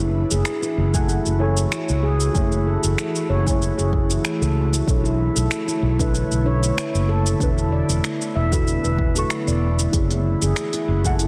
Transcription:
0.00 0.22 F#1 medium
0.00 4.84 E3 medium
0.00 0.90 A3 medium
0.00 11.28 A3 medium
0.00 0.13 E4 medium
0.00 0.89 E4 medium
0.00 4.84 F#4 medium
0.00 0.90 G#4 medium
0.00 0.91 C#5 medium
0.00 shaker soft
0.31 0.41 F#1 medium
0.31 0.61 G#4 medium
0.31 shaker medium
0.45 finger snap loud
0.45 shaker medium
0.62 0.92 E4 medium
0.62 shaker soft
0.77 1.17 F#1 medium
0.94 1.37 A3 medium
0.94 1.37 E4 medium
0.94 1.08 A4 medium
0.94 1.38 F#5 loud
0.94 1.37 G#5 medium
0.94 kick loud
0.94 shaker medium
1.09 1.25 E4 medium
1.09 shaker medium
1.26 1.64 F#1 medium
1.26 shaker soft
1.39 2.31 E4 medium
1.39 2.32 A4 medium
1.39 1.50 C#5 medium
1.39 2.32 G#5 medium
1.43 2.33 C#5 medium
1.57 shaker medium
1.72 2.02 E4 medium
1.72 finger snap medium
1.72 shaker soft
1.89 2.28 C#2 medium
1.89 shaker soft
2.03 2.19 G#4 medium
2.20 shaker medium
2.33 2.75 F#1 medium
2.33 3.43 A3 medium
2.33 3.42 E4 medium
2.33 2.65 E4 medium
2.33 3.44 C#5 loud
2.33 3.42 G#5 medium
2.33 kick loud
2.33 shaker medium
2.52 shaker soft
2.67 2.77 A4 medium
2.84 2.94 F#1 medium
2.84 shaker medium
2.98 3.29 E4 medium
2.98 finger snap loud
2.98 shaker medium
3.15 shaker soft
3.29 3.69 F#1 medium
3.29 3.45 C#5 medium
3.45 4.85 A3 medium
3.45 4.84 E4 medium
3.45 3.61 E4 medium
3.45 4.86 C#5 medium
3.45 4.84 G#5 medium
3.45 kick loud
3.45 shaker medium
3.62 shaker medium
3.78 4.17 F#1 medium
3.78 4.08 G#4 medium
3.78 shaker soft
3.93 kick loud
4.10 4.24 E4 medium
4.10 shaker medium
4.25 finger snap medium
4.25 shaker medium
4.41 4.80 C#2 medium
4.41 4.55 A4 medium
4.41 shaker soft
4.73 4.87 E4 medium
4.73 shaker medium
4.86 5.27 B1 medium
4.86 9.89 D3 medium
4.86 5.95 D4 medium
4.86 5.95 E4 medium
4.86 9.89 E4 medium
4.86 5.96 A4 medium
4.86 7.38 C#5 medium
4.86 kick loud
4.86 shaker medium
4.90 5.97 C#5 medium
5.04 5.18 E4 medium
5.04 shaker soft
5.35 5.46 B1 loud
5.35 5.66 A4 medium
5.35 shaker medium
5.51 finger snap medium
5.51 shaker medium
5.68 5.98 E4 medium
5.68 shaker soft
5.82 6.22 B1 loud
5.99 6.42 D4 medium
5.99 6.42 E4 medium
5.99 6.43 A4 medium
5.99 6.13 B4 medium
5.99 6.43 E5 loud
5.99 kick loud
5.99 shaker medium
6.14 6.30 E4 medium
6.14 shaker medium
6.31 6.70 B1 medium
6.31 shaker soft
6.44 7.36 D4 medium
6.44 7.37 E4 medium
6.44 7.37 A4 medium
6.44 6.56 C#5 medium
6.48 7.38 C#5 medium
6.63 shaker medium
6.77 7.07 E4 medium
6.77 finger snap medium
6.77 shaker medium
6.94 7.33 F#1 medium
6.94 shaker soft
7.09 7.25 A4 medium
7.26 shaker medium
7.39 7.80 E1 medium
7.39 9.91 B3 medium
7.39 8.48 D4 loud
7.39 7.71 E4 medium
7.39 8.48 F#4 medium
7.39 8.49 A4 medium
7.39 8.49 B4 loud
7.39 kick loud
7.39 shaker medium
7.58 shaker soft
7.72 7.82 D5 medium
7.89 7.99 E1 loud
7.89 shaker medium
8.04 8.34 E4 medium
8.04 finger snap medium
8.04 shaker medium
8.22 shaker soft
8.35 8.75 E1 medium
8.35 8.51 E5 medium
8.51 9.11 D4 medium
8.51 8.67 E4 medium
8.51 9.12 F#4 medium
8.51 9.12 A4 medium
8.51 9.13 B4 medium
8.51 kick loud
8.51 shaker medium
8.67 shaker medium
8.84 9.22 E1 medium
8.84 9.14 B4 medium
8.84 shaker soft
8.98 kick loud
9.14 9.89 D4 medium
9.14 9.30 E4 medium
9.14 9.90 F#4 medium
9.14 9.90 A4 medium
9.14 shaker medium
9.18 9.91 C#6 loud
9.30 finger snap medium
9.30 shaker medium
9.47 9.86 E1 medium
9.47 9.61 D5 medium
9.47 shaker soft
9.79 9.93 E4 medium
9.79 shaker medium
9.92 10.33 F#1 medium
9.92 11.28 E3 medium
9.92 11.01 A3 medium
9.92 11.00 E4 medium
9.92 11.28 F#4 medium
9.92 11.01 G#4 medium
9.92 11.02 C#5 medium
9.92 kick loud
9.92 open hi-hat medium
9.92 shaker medium
10.11 10.24 E4 medium
10.11 open hi-hat soft
10.11 shaker soft
10.42 10.52 F#1 medium
10.42 10.72 G#4 medium
10.42 shaker medium
10.56 finger snap medium
10.56 open hi-hat medium
10.56 shaker medium
10.73 11.03 E4 medium
10.73 open hi-hat soft
10.73 shaker soft
10.88 11.28 F#1 loud
11.04 11.28 A3 medium
11.04 11.28 E4 medium
11.04 11.19 A4 medium
11.04 11.28 F#5 loud
11.04 11.28 G#5 medium
11.04 kick loud
11.04 shaker medium
11.19 11.28 E4 medium
11.19 open hi-hat medium
11.19 shaker medium

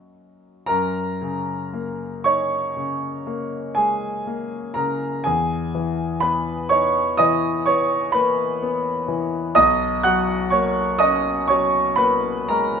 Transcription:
0.00 0.63 F#2 soft
0.00 0.63 F#3 soft
0.00 0.63 A#3 soft
0.00 0.64 D#4 soft
0.00 0.13 F#5 medium
0.66 5.22 F#2 soft
0.66 2.21 A#4 medium
0.66 2.25 A#5 medium
1.22 2.05 C#3 soft
1.73 2.56 A#3 soft
2.24 3.07 D#4 soft
2.24 3.73 C#5 medium
2.24 3.77 C#6 medium
2.77 3.57 C#3 soft
3.27 4.07 A#3 soft
3.75 4.27 G#3 soft
3.75 4.71 G#4 medium
3.75 4.75 G#5 medium
4.27 5.06 A#3 soft
4.74 5.26 C#3 soft
4.74 5.22 A#4 soft
4.74 5.25 A#5 medium
5.24 9.52 E2 soft
5.24 6.18 G#4 medium
5.24 6.21 G#5 medium
5.75 6.51 E3 soft
6.20 6.99 B3 soft
6.20 6.66 B4 medium
6.20 6.69 B5 medium
6.69 7.47 D#4 soft
6.69 7.14 C#5 medium
6.69 7.17 C#6 medium
7.17 7.95 E3 soft
7.17 7.63 D#5 medium
7.17 7.66 D#6 medium
7.66 8.43 B3 soft
7.66 8.11 C#5 medium
7.66 8.14 C#6 medium
8.12 8.61 A#3 soft
8.12 9.52 B4 medium
8.12 9.55 B5 medium
8.62 9.37 B3 soft
9.08 9.56 E3 soft
9.55 12.80 B1 medium
9.55 10.01 D#5 medium
9.55 10.04 D#6 loud
10.03 10.82 F#3 soft
10.03 10.50 F#5 medium
10.03 10.53 F#6 loud
10.50 11.30 A#3 soft
10.50 10.97 C#5 medium
10.50 11.00 C#6 medium
10.99 11.79 C#4 soft
10.99 11.46 D#5 medium
10.99 11.49 D#6 loud
11.48 12.31 F#3 soft
11.48 11.96 C#5 medium
11.48 11.99 C#6 medium
11.96 12.80 A#3 soft
11.96 12.47 B4 medium
11.96 12.50 B5 medium
12.48 12.80 G#3 soft
12.48 12.80 A#4 medium
12.48 12.80 A#5 medium

